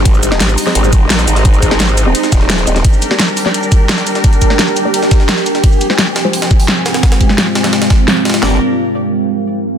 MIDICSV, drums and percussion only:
0, 0, Header, 1, 2, 480
1, 0, Start_track
1, 0, Tempo, 348837
1, 76, Time_signature, 4, 2, 24, 8
1, 13457, End_track
2, 0, Start_track
2, 0, Title_t, "Drums"
2, 75, Note_on_c, 9, 36, 127
2, 75, Note_on_c, 9, 51, 91
2, 76, Note_on_c, 9, 42, 94
2, 196, Note_on_c, 9, 82, 27
2, 213, Note_off_c, 9, 36, 0
2, 213, Note_off_c, 9, 42, 0
2, 213, Note_off_c, 9, 51, 0
2, 315, Note_on_c, 9, 51, 73
2, 316, Note_off_c, 9, 82, 0
2, 316, Note_on_c, 9, 42, 66
2, 316, Note_on_c, 9, 82, 57
2, 435, Note_on_c, 9, 38, 40
2, 436, Note_on_c, 9, 40, 58
2, 452, Note_off_c, 9, 51, 0
2, 453, Note_off_c, 9, 42, 0
2, 453, Note_off_c, 9, 82, 0
2, 555, Note_off_c, 9, 38, 0
2, 555, Note_on_c, 9, 38, 127
2, 555, Note_on_c, 9, 42, 91
2, 555, Note_on_c, 9, 51, 83
2, 574, Note_off_c, 9, 40, 0
2, 675, Note_on_c, 9, 40, 35
2, 675, Note_on_c, 9, 82, 26
2, 693, Note_off_c, 9, 38, 0
2, 693, Note_off_c, 9, 42, 0
2, 693, Note_off_c, 9, 51, 0
2, 795, Note_on_c, 9, 46, 83
2, 796, Note_off_c, 9, 82, 0
2, 796, Note_on_c, 9, 42, 62
2, 796, Note_on_c, 9, 82, 53
2, 813, Note_off_c, 9, 40, 0
2, 916, Note_on_c, 9, 38, 39
2, 933, Note_off_c, 9, 42, 0
2, 933, Note_off_c, 9, 46, 0
2, 933, Note_off_c, 9, 82, 0
2, 1035, Note_on_c, 9, 51, 93
2, 1036, Note_on_c, 9, 42, 94
2, 1053, Note_off_c, 9, 38, 0
2, 1156, Note_on_c, 9, 82, 26
2, 1172, Note_off_c, 9, 51, 0
2, 1174, Note_off_c, 9, 42, 0
2, 1275, Note_off_c, 9, 82, 0
2, 1275, Note_on_c, 9, 36, 114
2, 1275, Note_on_c, 9, 42, 63
2, 1275, Note_on_c, 9, 51, 67
2, 1275, Note_on_c, 9, 82, 55
2, 1413, Note_off_c, 9, 36, 0
2, 1413, Note_off_c, 9, 42, 0
2, 1413, Note_off_c, 9, 51, 0
2, 1413, Note_off_c, 9, 82, 0
2, 1515, Note_on_c, 9, 38, 114
2, 1515, Note_on_c, 9, 51, 86
2, 1516, Note_off_c, 9, 38, 0
2, 1516, Note_on_c, 9, 38, 126
2, 1516, Note_on_c, 9, 42, 90
2, 1635, Note_off_c, 9, 38, 0
2, 1635, Note_on_c, 9, 38, 59
2, 1636, Note_off_c, 9, 42, 0
2, 1636, Note_on_c, 9, 42, 37
2, 1636, Note_on_c, 9, 82, 26
2, 1652, Note_off_c, 9, 51, 0
2, 1755, Note_on_c, 9, 51, 69
2, 1756, Note_off_c, 9, 42, 0
2, 1756, Note_off_c, 9, 82, 0
2, 1756, Note_on_c, 9, 42, 65
2, 1756, Note_on_c, 9, 82, 58
2, 1773, Note_off_c, 9, 38, 0
2, 1875, Note_on_c, 9, 38, 48
2, 1876, Note_off_c, 9, 42, 0
2, 1876, Note_on_c, 9, 42, 37
2, 1893, Note_off_c, 9, 51, 0
2, 1894, Note_off_c, 9, 82, 0
2, 1995, Note_on_c, 9, 36, 127
2, 1995, Note_on_c, 9, 51, 93
2, 1996, Note_off_c, 9, 42, 0
2, 1996, Note_on_c, 9, 42, 84
2, 2012, Note_off_c, 9, 38, 0
2, 2115, Note_off_c, 9, 51, 0
2, 2115, Note_on_c, 9, 51, 46
2, 2117, Note_on_c, 9, 82, 27
2, 2133, Note_off_c, 9, 36, 0
2, 2134, Note_off_c, 9, 42, 0
2, 2235, Note_off_c, 9, 51, 0
2, 2235, Note_on_c, 9, 36, 60
2, 2235, Note_on_c, 9, 51, 73
2, 2236, Note_off_c, 9, 82, 0
2, 2236, Note_on_c, 9, 42, 63
2, 2236, Note_on_c, 9, 82, 58
2, 2355, Note_on_c, 9, 38, 38
2, 2357, Note_on_c, 9, 40, 55
2, 2372, Note_off_c, 9, 51, 0
2, 2373, Note_off_c, 9, 36, 0
2, 2374, Note_off_c, 9, 42, 0
2, 2374, Note_off_c, 9, 82, 0
2, 2474, Note_off_c, 9, 38, 0
2, 2474, Note_on_c, 9, 38, 120
2, 2474, Note_on_c, 9, 51, 86
2, 2477, Note_off_c, 9, 38, 0
2, 2477, Note_on_c, 9, 38, 125
2, 2477, Note_on_c, 9, 42, 93
2, 2494, Note_off_c, 9, 40, 0
2, 2597, Note_on_c, 9, 40, 32
2, 2597, Note_on_c, 9, 82, 26
2, 2612, Note_off_c, 9, 51, 0
2, 2614, Note_off_c, 9, 38, 0
2, 2614, Note_off_c, 9, 42, 0
2, 2715, Note_on_c, 9, 51, 73
2, 2716, Note_off_c, 9, 82, 0
2, 2716, Note_on_c, 9, 42, 63
2, 2716, Note_on_c, 9, 82, 57
2, 2734, Note_off_c, 9, 40, 0
2, 2853, Note_off_c, 9, 51, 0
2, 2854, Note_off_c, 9, 42, 0
2, 2854, Note_off_c, 9, 82, 0
2, 2955, Note_on_c, 9, 51, 88
2, 2956, Note_on_c, 9, 42, 89
2, 3075, Note_on_c, 9, 38, 53
2, 3076, Note_on_c, 9, 82, 27
2, 3093, Note_off_c, 9, 51, 0
2, 3094, Note_off_c, 9, 42, 0
2, 3195, Note_off_c, 9, 38, 0
2, 3195, Note_on_c, 9, 36, 107
2, 3195, Note_on_c, 9, 38, 61
2, 3195, Note_on_c, 9, 51, 70
2, 3196, Note_off_c, 9, 82, 0
2, 3196, Note_on_c, 9, 42, 59
2, 3196, Note_on_c, 9, 82, 56
2, 3315, Note_off_c, 9, 38, 0
2, 3315, Note_on_c, 9, 38, 44
2, 3333, Note_off_c, 9, 36, 0
2, 3333, Note_off_c, 9, 51, 0
2, 3334, Note_off_c, 9, 42, 0
2, 3334, Note_off_c, 9, 82, 0
2, 3435, Note_off_c, 9, 38, 0
2, 3435, Note_on_c, 9, 38, 114
2, 3435, Note_on_c, 9, 51, 88
2, 3436, Note_off_c, 9, 38, 0
2, 3436, Note_on_c, 9, 38, 124
2, 3436, Note_on_c, 9, 42, 87
2, 3555, Note_off_c, 9, 38, 0
2, 3555, Note_on_c, 9, 38, 50
2, 3556, Note_off_c, 9, 42, 0
2, 3556, Note_on_c, 9, 42, 35
2, 3556, Note_on_c, 9, 82, 28
2, 3572, Note_off_c, 9, 51, 0
2, 3675, Note_off_c, 9, 42, 0
2, 3675, Note_off_c, 9, 82, 0
2, 3675, Note_on_c, 9, 42, 61
2, 3675, Note_on_c, 9, 51, 70
2, 3675, Note_on_c, 9, 82, 58
2, 3692, Note_off_c, 9, 38, 0
2, 3795, Note_on_c, 9, 38, 49
2, 3796, Note_off_c, 9, 42, 0
2, 3796, Note_on_c, 9, 42, 36
2, 3813, Note_off_c, 9, 51, 0
2, 3813, Note_off_c, 9, 82, 0
2, 3915, Note_on_c, 9, 36, 121
2, 3915, Note_on_c, 9, 51, 92
2, 3916, Note_off_c, 9, 42, 0
2, 3916, Note_on_c, 9, 42, 91
2, 3933, Note_off_c, 9, 38, 0
2, 4036, Note_on_c, 9, 82, 29
2, 4053, Note_off_c, 9, 36, 0
2, 4053, Note_off_c, 9, 42, 0
2, 4053, Note_off_c, 9, 51, 0
2, 4155, Note_on_c, 9, 51, 74
2, 4156, Note_off_c, 9, 82, 0
2, 4156, Note_on_c, 9, 42, 65
2, 4156, Note_on_c, 9, 82, 59
2, 4276, Note_on_c, 9, 38, 42
2, 4276, Note_on_c, 9, 40, 52
2, 4293, Note_off_c, 9, 51, 0
2, 4294, Note_off_c, 9, 42, 0
2, 4294, Note_off_c, 9, 82, 0
2, 4395, Note_off_c, 9, 38, 0
2, 4395, Note_on_c, 9, 38, 112
2, 4395, Note_on_c, 9, 51, 88
2, 4396, Note_off_c, 9, 38, 0
2, 4396, Note_on_c, 9, 38, 123
2, 4396, Note_on_c, 9, 42, 90
2, 4414, Note_off_c, 9, 40, 0
2, 4516, Note_on_c, 9, 40, 32
2, 4516, Note_on_c, 9, 82, 27
2, 4533, Note_off_c, 9, 51, 0
2, 4534, Note_off_c, 9, 38, 0
2, 4534, Note_off_c, 9, 42, 0
2, 4636, Note_off_c, 9, 82, 0
2, 4636, Note_on_c, 9, 42, 61
2, 4636, Note_on_c, 9, 46, 80
2, 4636, Note_on_c, 9, 82, 60
2, 4654, Note_off_c, 9, 40, 0
2, 4756, Note_on_c, 9, 38, 37
2, 4773, Note_off_c, 9, 46, 0
2, 4774, Note_off_c, 9, 42, 0
2, 4774, Note_off_c, 9, 82, 0
2, 4876, Note_on_c, 9, 42, 86
2, 4876, Note_on_c, 9, 51, 86
2, 4894, Note_off_c, 9, 38, 0
2, 4997, Note_on_c, 9, 82, 28
2, 5013, Note_off_c, 9, 51, 0
2, 5014, Note_off_c, 9, 42, 0
2, 5115, Note_on_c, 9, 36, 99
2, 5115, Note_on_c, 9, 51, 69
2, 5116, Note_off_c, 9, 82, 0
2, 5116, Note_on_c, 9, 42, 63
2, 5116, Note_on_c, 9, 82, 56
2, 5253, Note_off_c, 9, 36, 0
2, 5253, Note_off_c, 9, 51, 0
2, 5254, Note_off_c, 9, 42, 0
2, 5254, Note_off_c, 9, 82, 0
2, 5355, Note_on_c, 9, 38, 118
2, 5355, Note_on_c, 9, 51, 88
2, 5356, Note_off_c, 9, 38, 0
2, 5356, Note_on_c, 9, 38, 115
2, 5356, Note_on_c, 9, 42, 89
2, 5475, Note_off_c, 9, 38, 0
2, 5475, Note_on_c, 9, 38, 56
2, 5476, Note_off_c, 9, 42, 0
2, 5476, Note_on_c, 9, 42, 36
2, 5476, Note_on_c, 9, 82, 28
2, 5493, Note_off_c, 9, 51, 0
2, 5595, Note_on_c, 9, 51, 72
2, 5596, Note_off_c, 9, 42, 0
2, 5596, Note_off_c, 9, 82, 0
2, 5596, Note_on_c, 9, 42, 63
2, 5596, Note_on_c, 9, 82, 57
2, 5613, Note_off_c, 9, 38, 0
2, 5715, Note_on_c, 9, 38, 48
2, 5716, Note_off_c, 9, 42, 0
2, 5716, Note_on_c, 9, 42, 38
2, 5732, Note_off_c, 9, 51, 0
2, 5733, Note_off_c, 9, 82, 0
2, 5834, Note_on_c, 9, 51, 93
2, 5835, Note_off_c, 9, 42, 0
2, 5835, Note_on_c, 9, 36, 121
2, 5835, Note_on_c, 9, 42, 88
2, 5852, Note_off_c, 9, 38, 0
2, 5954, Note_off_c, 9, 51, 0
2, 5954, Note_on_c, 9, 51, 46
2, 5956, Note_on_c, 9, 82, 31
2, 5973, Note_off_c, 9, 36, 0
2, 5973, Note_off_c, 9, 42, 0
2, 6074, Note_off_c, 9, 51, 0
2, 6074, Note_on_c, 9, 51, 68
2, 6075, Note_on_c, 9, 36, 58
2, 6076, Note_off_c, 9, 82, 0
2, 6076, Note_on_c, 9, 42, 64
2, 6076, Note_on_c, 9, 82, 65
2, 6194, Note_on_c, 9, 38, 37
2, 6196, Note_on_c, 9, 40, 53
2, 6212, Note_off_c, 9, 51, 0
2, 6213, Note_off_c, 9, 36, 0
2, 6214, Note_off_c, 9, 42, 0
2, 6214, Note_off_c, 9, 82, 0
2, 6315, Note_off_c, 9, 38, 0
2, 6315, Note_on_c, 9, 38, 115
2, 6315, Note_on_c, 9, 51, 89
2, 6316, Note_off_c, 9, 38, 0
2, 6316, Note_on_c, 9, 38, 116
2, 6316, Note_on_c, 9, 42, 90
2, 6333, Note_off_c, 9, 40, 0
2, 6436, Note_on_c, 9, 40, 33
2, 6436, Note_on_c, 9, 82, 29
2, 6452, Note_off_c, 9, 51, 0
2, 6454, Note_off_c, 9, 38, 0
2, 6454, Note_off_c, 9, 42, 0
2, 6555, Note_on_c, 9, 51, 69
2, 6556, Note_off_c, 9, 82, 0
2, 6556, Note_on_c, 9, 42, 66
2, 6556, Note_on_c, 9, 82, 63
2, 6574, Note_off_c, 9, 40, 0
2, 6693, Note_off_c, 9, 51, 0
2, 6694, Note_off_c, 9, 42, 0
2, 6694, Note_off_c, 9, 82, 0
2, 6795, Note_on_c, 9, 51, 91
2, 6796, Note_on_c, 9, 42, 98
2, 6915, Note_on_c, 9, 38, 52
2, 6916, Note_on_c, 9, 82, 29
2, 6933, Note_off_c, 9, 51, 0
2, 6934, Note_off_c, 9, 42, 0
2, 7035, Note_off_c, 9, 38, 0
2, 7035, Note_on_c, 9, 36, 104
2, 7035, Note_on_c, 9, 38, 59
2, 7035, Note_on_c, 9, 51, 73
2, 7036, Note_off_c, 9, 82, 0
2, 7036, Note_on_c, 9, 42, 63
2, 7036, Note_on_c, 9, 82, 57
2, 7155, Note_off_c, 9, 38, 0
2, 7155, Note_on_c, 9, 38, 45
2, 7173, Note_off_c, 9, 36, 0
2, 7173, Note_off_c, 9, 51, 0
2, 7174, Note_off_c, 9, 42, 0
2, 7174, Note_off_c, 9, 82, 0
2, 7274, Note_off_c, 9, 38, 0
2, 7274, Note_on_c, 9, 38, 115
2, 7274, Note_on_c, 9, 51, 88
2, 7276, Note_off_c, 9, 38, 0
2, 7276, Note_on_c, 9, 38, 115
2, 7276, Note_on_c, 9, 42, 89
2, 7395, Note_off_c, 9, 38, 0
2, 7395, Note_on_c, 9, 38, 53
2, 7396, Note_off_c, 9, 42, 0
2, 7396, Note_on_c, 9, 42, 37
2, 7396, Note_on_c, 9, 82, 30
2, 7412, Note_off_c, 9, 51, 0
2, 7515, Note_on_c, 9, 51, 69
2, 7516, Note_off_c, 9, 42, 0
2, 7516, Note_off_c, 9, 82, 0
2, 7516, Note_on_c, 9, 42, 67
2, 7516, Note_on_c, 9, 82, 63
2, 7532, Note_off_c, 9, 38, 0
2, 7635, Note_on_c, 9, 38, 48
2, 7636, Note_off_c, 9, 42, 0
2, 7636, Note_on_c, 9, 42, 38
2, 7653, Note_off_c, 9, 51, 0
2, 7654, Note_off_c, 9, 82, 0
2, 7755, Note_on_c, 9, 36, 114
2, 7755, Note_on_c, 9, 51, 93
2, 7756, Note_off_c, 9, 42, 0
2, 7756, Note_on_c, 9, 42, 100
2, 7773, Note_off_c, 9, 38, 0
2, 7876, Note_on_c, 9, 82, 31
2, 7893, Note_off_c, 9, 36, 0
2, 7893, Note_off_c, 9, 51, 0
2, 7894, Note_off_c, 9, 42, 0
2, 7995, Note_off_c, 9, 82, 0
2, 7995, Note_on_c, 9, 42, 69
2, 7995, Note_on_c, 9, 51, 71
2, 7995, Note_on_c, 9, 82, 63
2, 8115, Note_on_c, 9, 38, 40
2, 8116, Note_on_c, 9, 40, 53
2, 8133, Note_off_c, 9, 42, 0
2, 8133, Note_off_c, 9, 51, 0
2, 8133, Note_off_c, 9, 82, 0
2, 8235, Note_off_c, 9, 38, 0
2, 8235, Note_on_c, 9, 38, 119
2, 8235, Note_on_c, 9, 42, 96
2, 8235, Note_on_c, 9, 51, 89
2, 8253, Note_off_c, 9, 40, 0
2, 8355, Note_on_c, 9, 40, 32
2, 8355, Note_on_c, 9, 82, 28
2, 8372, Note_off_c, 9, 51, 0
2, 8373, Note_off_c, 9, 38, 0
2, 8373, Note_off_c, 9, 42, 0
2, 8474, Note_on_c, 9, 38, 108
2, 8474, Note_on_c, 9, 51, 79
2, 8475, Note_off_c, 9, 82, 0
2, 8475, Note_on_c, 9, 42, 68
2, 8475, Note_on_c, 9, 82, 63
2, 8493, Note_off_c, 9, 40, 0
2, 8612, Note_off_c, 9, 38, 0
2, 8612, Note_off_c, 9, 42, 0
2, 8612, Note_off_c, 9, 51, 0
2, 8612, Note_off_c, 9, 82, 0
2, 8715, Note_on_c, 9, 42, 101
2, 8715, Note_on_c, 9, 46, 76
2, 8835, Note_on_c, 9, 38, 102
2, 8835, Note_on_c, 9, 51, 78
2, 8835, Note_on_c, 9, 82, 29
2, 8852, Note_off_c, 9, 42, 0
2, 8853, Note_off_c, 9, 46, 0
2, 8955, Note_off_c, 9, 82, 0
2, 8955, Note_on_c, 9, 36, 96
2, 8955, Note_on_c, 9, 42, 69
2, 8955, Note_on_c, 9, 82, 59
2, 8973, Note_off_c, 9, 38, 0
2, 8973, Note_off_c, 9, 51, 0
2, 9076, Note_on_c, 9, 46, 73
2, 9093, Note_off_c, 9, 36, 0
2, 9093, Note_off_c, 9, 42, 0
2, 9093, Note_off_c, 9, 82, 0
2, 9196, Note_on_c, 9, 38, 107
2, 9196, Note_on_c, 9, 42, 98
2, 9196, Note_on_c, 9, 51, 76
2, 9213, Note_off_c, 9, 46, 0
2, 9316, Note_off_c, 9, 42, 0
2, 9316, Note_on_c, 9, 42, 39
2, 9316, Note_on_c, 9, 82, 30
2, 9333, Note_off_c, 9, 38, 0
2, 9333, Note_off_c, 9, 51, 0
2, 9435, Note_off_c, 9, 42, 0
2, 9435, Note_off_c, 9, 82, 0
2, 9435, Note_on_c, 9, 38, 105
2, 9435, Note_on_c, 9, 42, 67
2, 9435, Note_on_c, 9, 51, 78
2, 9435, Note_on_c, 9, 82, 62
2, 9555, Note_off_c, 9, 38, 0
2, 9555, Note_off_c, 9, 51, 0
2, 9555, Note_on_c, 9, 38, 100
2, 9555, Note_on_c, 9, 51, 79
2, 9556, Note_off_c, 9, 42, 0
2, 9556, Note_on_c, 9, 42, 39
2, 9573, Note_off_c, 9, 82, 0
2, 9675, Note_off_c, 9, 38, 0
2, 9675, Note_off_c, 9, 51, 0
2, 9675, Note_on_c, 9, 36, 119
2, 9675, Note_on_c, 9, 38, 109
2, 9675, Note_on_c, 9, 51, 82
2, 9676, Note_off_c, 9, 42, 0
2, 9676, Note_on_c, 9, 42, 96
2, 9795, Note_off_c, 9, 38, 0
2, 9795, Note_off_c, 9, 51, 0
2, 9795, Note_on_c, 9, 38, 112
2, 9795, Note_on_c, 9, 51, 86
2, 9796, Note_on_c, 9, 82, 30
2, 9813, Note_off_c, 9, 36, 0
2, 9813, Note_off_c, 9, 42, 0
2, 9915, Note_off_c, 9, 51, 0
2, 9915, Note_on_c, 9, 36, 60
2, 9915, Note_on_c, 9, 51, 70
2, 9916, Note_off_c, 9, 82, 0
2, 9916, Note_on_c, 9, 42, 69
2, 9916, Note_on_c, 9, 82, 64
2, 9933, Note_off_c, 9, 38, 0
2, 10035, Note_on_c, 9, 38, 38
2, 10036, Note_off_c, 9, 42, 0
2, 10036, Note_on_c, 9, 40, 57
2, 10036, Note_on_c, 9, 42, 39
2, 10053, Note_off_c, 9, 36, 0
2, 10053, Note_off_c, 9, 51, 0
2, 10053, Note_off_c, 9, 82, 0
2, 10155, Note_off_c, 9, 38, 0
2, 10155, Note_on_c, 9, 38, 117
2, 10155, Note_on_c, 9, 51, 85
2, 10156, Note_off_c, 9, 38, 0
2, 10156, Note_off_c, 9, 42, 0
2, 10156, Note_on_c, 9, 38, 119
2, 10156, Note_on_c, 9, 42, 96
2, 10173, Note_off_c, 9, 40, 0
2, 10276, Note_on_c, 9, 40, 32
2, 10276, Note_on_c, 9, 82, 29
2, 10293, Note_off_c, 9, 51, 0
2, 10294, Note_off_c, 9, 38, 0
2, 10294, Note_off_c, 9, 42, 0
2, 10394, Note_on_c, 9, 38, 110
2, 10394, Note_on_c, 9, 51, 79
2, 10396, Note_off_c, 9, 82, 0
2, 10396, Note_on_c, 9, 42, 69
2, 10396, Note_on_c, 9, 82, 62
2, 10414, Note_off_c, 9, 40, 0
2, 10515, Note_off_c, 9, 38, 0
2, 10515, Note_off_c, 9, 51, 0
2, 10515, Note_on_c, 9, 38, 97
2, 10515, Note_on_c, 9, 51, 78
2, 10516, Note_off_c, 9, 38, 0
2, 10516, Note_on_c, 9, 38, 35
2, 10533, Note_off_c, 9, 42, 0
2, 10533, Note_off_c, 9, 82, 0
2, 10634, Note_off_c, 9, 38, 0
2, 10634, Note_off_c, 9, 51, 0
2, 10634, Note_on_c, 9, 38, 103
2, 10634, Note_on_c, 9, 51, 83
2, 10636, Note_on_c, 9, 42, 98
2, 10754, Note_off_c, 9, 38, 0
2, 10754, Note_off_c, 9, 51, 0
2, 10754, Note_on_c, 9, 38, 104
2, 10754, Note_on_c, 9, 51, 80
2, 10756, Note_on_c, 9, 82, 29
2, 10773, Note_off_c, 9, 42, 0
2, 10875, Note_off_c, 9, 38, 0
2, 10875, Note_off_c, 9, 51, 0
2, 10875, Note_on_c, 9, 36, 101
2, 10875, Note_on_c, 9, 38, 104
2, 10875, Note_on_c, 9, 51, 81
2, 10876, Note_off_c, 9, 82, 0
2, 10876, Note_on_c, 9, 42, 66
2, 10876, Note_on_c, 9, 82, 60
2, 11012, Note_off_c, 9, 38, 0
2, 11012, Note_off_c, 9, 51, 0
2, 11013, Note_off_c, 9, 36, 0
2, 11014, Note_off_c, 9, 42, 0
2, 11014, Note_off_c, 9, 82, 0
2, 11115, Note_on_c, 9, 46, 69
2, 11116, Note_on_c, 9, 38, 121
2, 11116, Note_on_c, 9, 42, 96
2, 11236, Note_off_c, 9, 42, 0
2, 11236, Note_on_c, 9, 42, 39
2, 11236, Note_on_c, 9, 82, 29
2, 11253, Note_off_c, 9, 38, 0
2, 11253, Note_off_c, 9, 46, 0
2, 11355, Note_on_c, 9, 38, 89
2, 11355, Note_on_c, 9, 51, 69
2, 11356, Note_off_c, 9, 42, 0
2, 11356, Note_off_c, 9, 82, 0
2, 11356, Note_on_c, 9, 42, 71
2, 11356, Note_on_c, 9, 82, 58
2, 11415, Note_off_c, 9, 38, 0
2, 11415, Note_off_c, 9, 51, 0
2, 11415, Note_on_c, 9, 38, 94
2, 11415, Note_on_c, 9, 51, 69
2, 11474, Note_off_c, 9, 38, 0
2, 11474, Note_off_c, 9, 51, 0
2, 11474, Note_on_c, 9, 38, 102
2, 11474, Note_on_c, 9, 51, 75
2, 11476, Note_off_c, 9, 42, 0
2, 11476, Note_on_c, 9, 42, 39
2, 11494, Note_off_c, 9, 82, 0
2, 11595, Note_off_c, 9, 38, 0
2, 11595, Note_on_c, 9, 38, 109
2, 11612, Note_off_c, 9, 51, 0
2, 11613, Note_off_c, 9, 42, 0
2, 11732, Note_off_c, 9, 38, 0
2, 13457, End_track
0, 0, End_of_file